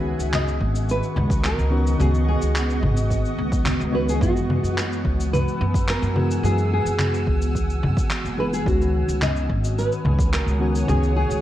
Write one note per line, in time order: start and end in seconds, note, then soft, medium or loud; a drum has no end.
0.00 0.16 C#2 medium
0.00 1.68 D#3 medium
0.00 1.68 B3 medium
0.00 8.62 B3 medium
0.00 1.68 C#4 medium
0.00 0.36 F#4 loud
0.00 1.69 F#4 medium
0.00 4.18 D#5 medium
0.00 8.62 F#5 medium
0.00 4.18 C#6 medium
0.19 0.57 C#2 medium
0.19 cabasa medium
0.33 0.91 D#5 loud
0.33 clap loud
0.33 low conga medium
0.33 cabasa medium
0.48 cabasa soft
0.61 0.99 G#1 medium
0.61 kick medium
0.75 cabasa medium
0.89 1.45 B4 loud
0.89 cabasa medium
1.03 cabasa soft
1.16 1.55 C#2 loud
1.16 low conga medium
1.30 kick loud
1.30 cabasa medium
1.44 1.96 A#4 loud
1.44 clap medium
1.44 cabasa medium
1.58 1.96 C#2 medium
1.58 cabasa soft
1.70 1.95 D#3 medium
1.70 1.96 B3 medium
1.70 1.96 C#4 medium
1.70 1.96 F#4 medium
1.87 cabasa medium
1.98 2.38 C#2 loud
1.98 3.90 D#3 medium
1.98 3.90 B3 medium
1.98 3.91 C#4 medium
1.98 3.91 F#4 medium
1.98 2.08 G#4 loud
1.98 low conga medium
1.98 cabasa medium
2.14 cabasa soft
2.28 3.87 G#4 medium
2.41 2.80 C#2 medium
2.41 cabasa medium
2.55 clap loud
2.55 cabasa medium
2.70 cabasa soft
2.82 3.21 G#1 medium
2.82 kick medium
2.82 low conga medium
2.97 cabasa medium
3.10 kick medium
3.10 cabasa medium
3.25 cabasa soft
3.38 3.77 C#2 loud
3.52 kick loud
3.52 cabasa medium
3.66 clap loud
3.66 low conga medium
3.66 cabasa medium
3.80 4.18 C#2 medium
3.80 cabasa soft
3.92 4.18 D#3 medium
3.92 4.18 B3 medium
3.92 4.18 C#4 medium
3.92 4.19 F#4 medium
3.92 4.09 B4 loud
3.92 3.95 C#5 medium
4.09 4.22 G#4 medium
4.09 cabasa medium
4.20 4.60 F#2 loud
4.20 6.12 E3 medium
4.20 6.12 G#3 medium
4.20 6.13 B3 medium
4.20 4.79 F#4 medium
4.20 6.13 F#4 medium
4.20 8.63 G#5 medium
4.20 8.63 E6 loud
4.20 kick loud
4.20 cabasa medium
4.37 cabasa soft
4.50 low conga medium
4.63 5.02 F#2 medium
4.63 cabasa medium
4.78 5.30 C#5 loud
4.78 clap loud
4.78 cabasa medium
4.92 cabasa soft
5.05 5.43 C#2 medium
5.05 kick medium
5.20 cabasa medium
5.33 5.85 B4 loud
5.33 low conga medium
5.33 cabasa medium
5.48 cabasa soft
5.61 5.99 F#2 loud
5.74 kick loud
5.74 cabasa medium
5.88 6.46 A#4 loud
5.88 clap loud
5.88 cabasa medium
6.02 6.41 F#2 loud
6.02 cabasa soft
6.15 6.40 E3 medium
6.15 6.40 G#3 medium
6.15 6.41 B3 medium
6.15 6.41 F#4 medium
6.15 low conga medium
6.31 cabasa medium
6.42 6.82 F#2 loud
6.42 8.34 E3 medium
6.42 8.35 G#3 medium
6.42 8.35 B3 medium
6.42 8.36 F#4 medium
6.42 6.70 G#4 loud
6.42 cabasa medium
6.58 cabasa soft
6.73 8.44 G#4 medium
6.85 7.24 F#2 medium
6.85 cabasa medium
6.99 clap loud
6.99 low conga medium
6.99 cabasa medium
7.14 cabasa soft
7.27 7.84 C#2 medium
7.27 kick medium
7.42 cabasa medium
7.55 kick medium
7.55 cabasa medium
7.70 cabasa soft
7.83 7.95 F#2 loud
7.83 low conga medium
7.97 kick loud
7.97 cabasa medium
8.10 clap medium
8.10 cabasa medium
8.24 8.63 F#1 medium
8.24 cabasa soft
8.37 8.52 E3 medium
8.37 8.52 G#3 medium
8.37 8.52 B3 medium
8.37 8.52 G#4 medium
8.37 8.45 B4 medium
8.53 8.68 G#4 medium
8.53 cabasa medium
8.64 9.05 C#2 loud
8.64 10.56 D#3 medium
8.64 10.57 B3 medium
8.64 10.57 C#4 medium
8.64 9.22 F#4 medium
8.64 10.58 F#4 medium
8.64 11.41 C#5 medium
8.64 11.41 F#5 medium
8.64 11.41 G#5 medium
8.64 11.41 D#6 medium
8.64 kick loud
8.64 cabasa medium
8.81 cabasa soft
9.08 9.46 C#2 medium
9.08 cabasa medium
9.22 9.78 D#5 loud
9.22 clap loud
9.22 low conga medium
9.22 cabasa medium
9.36 cabasa soft
9.49 9.88 G#1 medium
9.49 kick medium
9.64 cabasa medium
9.79 10.34 B4 medium
9.79 cabasa medium
9.92 cabasa soft
10.05 10.43 C#2 loud
10.05 low conga medium
10.19 kick loud
10.19 cabasa medium
10.34 10.89 A#4 loud
10.34 clap medium
10.34 cabasa medium
10.47 10.85 C#2 medium
10.47 cabasa soft
10.60 10.85 D#3 medium
10.60 10.85 B3 medium
10.60 10.85 C#4 medium
10.60 10.85 F#4 medium
10.76 cabasa medium
10.87 11.27 C#2 loud
10.87 11.41 D#3 medium
10.87 11.41 B3 medium
10.87 11.41 C#4 medium
10.87 11.41 F#4 medium
10.87 11.15 G#4 medium
10.87 low conga medium
10.87 cabasa medium
11.03 cabasa soft
11.16 11.41 G#4 loud
11.30 11.41 C#2 medium
11.30 cabasa medium